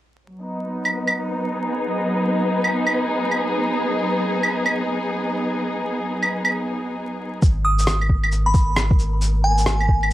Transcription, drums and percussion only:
0, 0, Header, 1, 2, 480
1, 0, Start_track
1, 0, Key_signature, 5, "minor"
1, 0, Tempo, 447761
1, 282, Time_signature, 4, 2, 24, 8
1, 10860, End_track
2, 0, Start_track
2, 0, Title_t, "Drums"
2, 912, Note_on_c, 9, 75, 47
2, 1019, Note_off_c, 9, 75, 0
2, 1152, Note_on_c, 9, 75, 55
2, 1259, Note_off_c, 9, 75, 0
2, 2832, Note_on_c, 9, 75, 49
2, 2939, Note_off_c, 9, 75, 0
2, 3072, Note_on_c, 9, 75, 55
2, 3179, Note_off_c, 9, 75, 0
2, 3553, Note_on_c, 9, 75, 34
2, 3660, Note_off_c, 9, 75, 0
2, 4752, Note_on_c, 9, 75, 47
2, 4859, Note_off_c, 9, 75, 0
2, 4992, Note_on_c, 9, 75, 54
2, 5099, Note_off_c, 9, 75, 0
2, 6673, Note_on_c, 9, 75, 48
2, 6781, Note_off_c, 9, 75, 0
2, 6912, Note_on_c, 9, 75, 54
2, 7019, Note_off_c, 9, 75, 0
2, 7959, Note_on_c, 9, 36, 107
2, 7959, Note_on_c, 9, 82, 54
2, 8066, Note_off_c, 9, 36, 0
2, 8066, Note_off_c, 9, 82, 0
2, 8349, Note_on_c, 9, 82, 55
2, 8437, Note_off_c, 9, 82, 0
2, 8437, Note_on_c, 9, 37, 99
2, 8437, Note_on_c, 9, 82, 53
2, 8544, Note_off_c, 9, 37, 0
2, 8544, Note_off_c, 9, 82, 0
2, 8591, Note_on_c, 9, 75, 51
2, 8677, Note_on_c, 9, 36, 59
2, 8698, Note_off_c, 9, 75, 0
2, 8785, Note_off_c, 9, 36, 0
2, 8828, Note_on_c, 9, 75, 61
2, 8918, Note_on_c, 9, 82, 53
2, 8936, Note_off_c, 9, 75, 0
2, 9025, Note_off_c, 9, 82, 0
2, 9155, Note_on_c, 9, 82, 53
2, 9157, Note_on_c, 9, 36, 99
2, 9262, Note_off_c, 9, 82, 0
2, 9264, Note_off_c, 9, 36, 0
2, 9396, Note_on_c, 9, 37, 100
2, 9396, Note_on_c, 9, 82, 56
2, 9503, Note_off_c, 9, 37, 0
2, 9503, Note_off_c, 9, 82, 0
2, 9548, Note_on_c, 9, 36, 97
2, 9638, Note_on_c, 9, 82, 30
2, 9656, Note_off_c, 9, 36, 0
2, 9745, Note_off_c, 9, 82, 0
2, 9878, Note_on_c, 9, 82, 56
2, 9985, Note_off_c, 9, 82, 0
2, 10268, Note_on_c, 9, 82, 55
2, 10357, Note_off_c, 9, 82, 0
2, 10357, Note_on_c, 9, 37, 98
2, 10357, Note_on_c, 9, 82, 53
2, 10464, Note_off_c, 9, 37, 0
2, 10464, Note_off_c, 9, 82, 0
2, 10510, Note_on_c, 9, 75, 49
2, 10598, Note_on_c, 9, 36, 61
2, 10617, Note_off_c, 9, 75, 0
2, 10706, Note_off_c, 9, 36, 0
2, 10753, Note_on_c, 9, 75, 57
2, 10860, Note_off_c, 9, 75, 0
2, 10860, End_track
0, 0, End_of_file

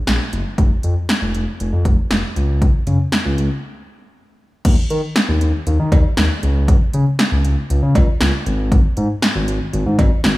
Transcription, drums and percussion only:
0, 0, Header, 1, 2, 480
1, 0, Start_track
1, 0, Tempo, 508475
1, 549, Time_signature, 4, 2, 24, 8
1, 9796, End_track
2, 0, Start_track
2, 0, Title_t, "Drums"
2, 69, Note_on_c, 9, 38, 107
2, 70, Note_on_c, 9, 42, 59
2, 163, Note_off_c, 9, 38, 0
2, 165, Note_off_c, 9, 42, 0
2, 310, Note_on_c, 9, 42, 65
2, 404, Note_off_c, 9, 42, 0
2, 549, Note_on_c, 9, 36, 105
2, 549, Note_on_c, 9, 42, 70
2, 644, Note_off_c, 9, 36, 0
2, 644, Note_off_c, 9, 42, 0
2, 786, Note_on_c, 9, 42, 62
2, 881, Note_off_c, 9, 42, 0
2, 1029, Note_on_c, 9, 38, 108
2, 1030, Note_on_c, 9, 42, 74
2, 1124, Note_off_c, 9, 38, 0
2, 1125, Note_off_c, 9, 42, 0
2, 1269, Note_on_c, 9, 42, 64
2, 1364, Note_off_c, 9, 42, 0
2, 1512, Note_on_c, 9, 42, 68
2, 1606, Note_off_c, 9, 42, 0
2, 1748, Note_on_c, 9, 36, 93
2, 1749, Note_on_c, 9, 42, 61
2, 1843, Note_off_c, 9, 36, 0
2, 1843, Note_off_c, 9, 42, 0
2, 1988, Note_on_c, 9, 38, 103
2, 1990, Note_on_c, 9, 42, 60
2, 2083, Note_off_c, 9, 38, 0
2, 2084, Note_off_c, 9, 42, 0
2, 2231, Note_on_c, 9, 42, 66
2, 2326, Note_off_c, 9, 42, 0
2, 2471, Note_on_c, 9, 36, 103
2, 2471, Note_on_c, 9, 42, 70
2, 2565, Note_off_c, 9, 36, 0
2, 2565, Note_off_c, 9, 42, 0
2, 2707, Note_on_c, 9, 42, 61
2, 2709, Note_on_c, 9, 45, 86
2, 2802, Note_off_c, 9, 42, 0
2, 2804, Note_off_c, 9, 45, 0
2, 2948, Note_on_c, 9, 38, 109
2, 2949, Note_on_c, 9, 42, 73
2, 3042, Note_off_c, 9, 38, 0
2, 3044, Note_off_c, 9, 42, 0
2, 3191, Note_on_c, 9, 42, 65
2, 3286, Note_off_c, 9, 42, 0
2, 4389, Note_on_c, 9, 42, 75
2, 4389, Note_on_c, 9, 49, 93
2, 4390, Note_on_c, 9, 36, 109
2, 4483, Note_off_c, 9, 49, 0
2, 4484, Note_off_c, 9, 36, 0
2, 4484, Note_off_c, 9, 42, 0
2, 4627, Note_on_c, 9, 42, 62
2, 4721, Note_off_c, 9, 42, 0
2, 4868, Note_on_c, 9, 38, 111
2, 4869, Note_on_c, 9, 42, 78
2, 4962, Note_off_c, 9, 38, 0
2, 4963, Note_off_c, 9, 42, 0
2, 5108, Note_on_c, 9, 42, 65
2, 5202, Note_off_c, 9, 42, 0
2, 5349, Note_on_c, 9, 42, 69
2, 5444, Note_off_c, 9, 42, 0
2, 5588, Note_on_c, 9, 36, 96
2, 5588, Note_on_c, 9, 42, 67
2, 5591, Note_on_c, 9, 56, 67
2, 5682, Note_off_c, 9, 36, 0
2, 5683, Note_off_c, 9, 42, 0
2, 5685, Note_off_c, 9, 56, 0
2, 5827, Note_on_c, 9, 38, 112
2, 5828, Note_on_c, 9, 42, 61
2, 5921, Note_off_c, 9, 38, 0
2, 5923, Note_off_c, 9, 42, 0
2, 6069, Note_on_c, 9, 42, 69
2, 6164, Note_off_c, 9, 42, 0
2, 6309, Note_on_c, 9, 36, 110
2, 6309, Note_on_c, 9, 42, 77
2, 6403, Note_off_c, 9, 36, 0
2, 6403, Note_off_c, 9, 42, 0
2, 6546, Note_on_c, 9, 42, 65
2, 6641, Note_off_c, 9, 42, 0
2, 6787, Note_on_c, 9, 38, 114
2, 6788, Note_on_c, 9, 42, 76
2, 6882, Note_off_c, 9, 38, 0
2, 6883, Note_off_c, 9, 42, 0
2, 7029, Note_on_c, 9, 42, 65
2, 7123, Note_off_c, 9, 42, 0
2, 7271, Note_on_c, 9, 42, 69
2, 7365, Note_off_c, 9, 42, 0
2, 7507, Note_on_c, 9, 36, 96
2, 7508, Note_on_c, 9, 42, 67
2, 7511, Note_on_c, 9, 56, 66
2, 7602, Note_off_c, 9, 36, 0
2, 7603, Note_off_c, 9, 42, 0
2, 7605, Note_off_c, 9, 56, 0
2, 7747, Note_on_c, 9, 38, 106
2, 7748, Note_on_c, 9, 42, 64
2, 7841, Note_off_c, 9, 38, 0
2, 7843, Note_off_c, 9, 42, 0
2, 7990, Note_on_c, 9, 42, 68
2, 8085, Note_off_c, 9, 42, 0
2, 8229, Note_on_c, 9, 36, 113
2, 8230, Note_on_c, 9, 42, 72
2, 8324, Note_off_c, 9, 36, 0
2, 8324, Note_off_c, 9, 42, 0
2, 8466, Note_on_c, 9, 42, 64
2, 8560, Note_off_c, 9, 42, 0
2, 8707, Note_on_c, 9, 38, 115
2, 8709, Note_on_c, 9, 42, 78
2, 8802, Note_off_c, 9, 38, 0
2, 8803, Note_off_c, 9, 42, 0
2, 8949, Note_on_c, 9, 42, 68
2, 9043, Note_off_c, 9, 42, 0
2, 9189, Note_on_c, 9, 42, 72
2, 9284, Note_off_c, 9, 42, 0
2, 9427, Note_on_c, 9, 36, 93
2, 9428, Note_on_c, 9, 42, 66
2, 9431, Note_on_c, 9, 56, 67
2, 9522, Note_off_c, 9, 36, 0
2, 9523, Note_off_c, 9, 42, 0
2, 9525, Note_off_c, 9, 56, 0
2, 9666, Note_on_c, 9, 38, 110
2, 9668, Note_on_c, 9, 42, 65
2, 9760, Note_off_c, 9, 38, 0
2, 9762, Note_off_c, 9, 42, 0
2, 9796, End_track
0, 0, End_of_file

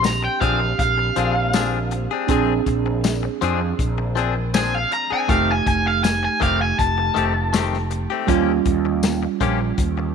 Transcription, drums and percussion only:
0, 0, Header, 1, 2, 480
1, 0, Start_track
1, 0, Tempo, 749064
1, 1467, Time_signature, 4, 2, 24, 8
1, 6503, End_track
2, 0, Start_track
2, 0, Title_t, "Drums"
2, 25, Note_on_c, 9, 42, 67
2, 25, Note_on_c, 9, 54, 87
2, 31, Note_on_c, 9, 38, 93
2, 89, Note_off_c, 9, 42, 0
2, 89, Note_off_c, 9, 54, 0
2, 95, Note_off_c, 9, 38, 0
2, 266, Note_on_c, 9, 36, 76
2, 266, Note_on_c, 9, 42, 58
2, 330, Note_off_c, 9, 36, 0
2, 330, Note_off_c, 9, 42, 0
2, 506, Note_on_c, 9, 36, 77
2, 507, Note_on_c, 9, 42, 79
2, 570, Note_off_c, 9, 36, 0
2, 571, Note_off_c, 9, 42, 0
2, 744, Note_on_c, 9, 42, 65
2, 808, Note_off_c, 9, 42, 0
2, 983, Note_on_c, 9, 42, 82
2, 983, Note_on_c, 9, 54, 101
2, 988, Note_on_c, 9, 38, 104
2, 1047, Note_off_c, 9, 42, 0
2, 1047, Note_off_c, 9, 54, 0
2, 1053, Note_off_c, 9, 38, 0
2, 1224, Note_on_c, 9, 42, 59
2, 1288, Note_off_c, 9, 42, 0
2, 1463, Note_on_c, 9, 42, 84
2, 1466, Note_on_c, 9, 36, 102
2, 1527, Note_off_c, 9, 42, 0
2, 1530, Note_off_c, 9, 36, 0
2, 1707, Note_on_c, 9, 36, 76
2, 1707, Note_on_c, 9, 42, 56
2, 1771, Note_off_c, 9, 36, 0
2, 1771, Note_off_c, 9, 42, 0
2, 1947, Note_on_c, 9, 42, 79
2, 1947, Note_on_c, 9, 54, 91
2, 1952, Note_on_c, 9, 38, 98
2, 2011, Note_off_c, 9, 42, 0
2, 2011, Note_off_c, 9, 54, 0
2, 2017, Note_off_c, 9, 38, 0
2, 2189, Note_on_c, 9, 42, 62
2, 2254, Note_off_c, 9, 42, 0
2, 2429, Note_on_c, 9, 36, 81
2, 2430, Note_on_c, 9, 42, 73
2, 2493, Note_off_c, 9, 36, 0
2, 2494, Note_off_c, 9, 42, 0
2, 2669, Note_on_c, 9, 42, 54
2, 2733, Note_off_c, 9, 42, 0
2, 2909, Note_on_c, 9, 42, 76
2, 2909, Note_on_c, 9, 54, 110
2, 2914, Note_on_c, 9, 38, 115
2, 2973, Note_off_c, 9, 42, 0
2, 2973, Note_off_c, 9, 54, 0
2, 2979, Note_off_c, 9, 38, 0
2, 3150, Note_on_c, 9, 42, 54
2, 3214, Note_off_c, 9, 42, 0
2, 3390, Note_on_c, 9, 36, 107
2, 3390, Note_on_c, 9, 42, 71
2, 3454, Note_off_c, 9, 36, 0
2, 3454, Note_off_c, 9, 42, 0
2, 3630, Note_on_c, 9, 36, 75
2, 3630, Note_on_c, 9, 42, 56
2, 3694, Note_off_c, 9, 36, 0
2, 3694, Note_off_c, 9, 42, 0
2, 3871, Note_on_c, 9, 42, 73
2, 3871, Note_on_c, 9, 54, 95
2, 3876, Note_on_c, 9, 38, 98
2, 3935, Note_off_c, 9, 42, 0
2, 3935, Note_off_c, 9, 54, 0
2, 3940, Note_off_c, 9, 38, 0
2, 4111, Note_on_c, 9, 36, 81
2, 4114, Note_on_c, 9, 42, 62
2, 4175, Note_off_c, 9, 36, 0
2, 4178, Note_off_c, 9, 42, 0
2, 4351, Note_on_c, 9, 36, 74
2, 4352, Note_on_c, 9, 42, 80
2, 4415, Note_off_c, 9, 36, 0
2, 4416, Note_off_c, 9, 42, 0
2, 4588, Note_on_c, 9, 42, 59
2, 4652, Note_off_c, 9, 42, 0
2, 4829, Note_on_c, 9, 42, 85
2, 4829, Note_on_c, 9, 54, 105
2, 4834, Note_on_c, 9, 38, 106
2, 4893, Note_off_c, 9, 42, 0
2, 4893, Note_off_c, 9, 54, 0
2, 4898, Note_off_c, 9, 38, 0
2, 4957, Note_on_c, 9, 38, 31
2, 5021, Note_off_c, 9, 38, 0
2, 5066, Note_on_c, 9, 42, 64
2, 5130, Note_off_c, 9, 42, 0
2, 5307, Note_on_c, 9, 42, 90
2, 5308, Note_on_c, 9, 36, 103
2, 5371, Note_off_c, 9, 42, 0
2, 5372, Note_off_c, 9, 36, 0
2, 5545, Note_on_c, 9, 42, 61
2, 5548, Note_on_c, 9, 36, 81
2, 5609, Note_off_c, 9, 42, 0
2, 5612, Note_off_c, 9, 36, 0
2, 5786, Note_on_c, 9, 42, 87
2, 5786, Note_on_c, 9, 54, 106
2, 5791, Note_on_c, 9, 38, 101
2, 5850, Note_off_c, 9, 42, 0
2, 5850, Note_off_c, 9, 54, 0
2, 5855, Note_off_c, 9, 38, 0
2, 6028, Note_on_c, 9, 36, 76
2, 6028, Note_on_c, 9, 42, 61
2, 6092, Note_off_c, 9, 36, 0
2, 6092, Note_off_c, 9, 42, 0
2, 6265, Note_on_c, 9, 42, 82
2, 6267, Note_on_c, 9, 36, 88
2, 6329, Note_off_c, 9, 42, 0
2, 6331, Note_off_c, 9, 36, 0
2, 6503, End_track
0, 0, End_of_file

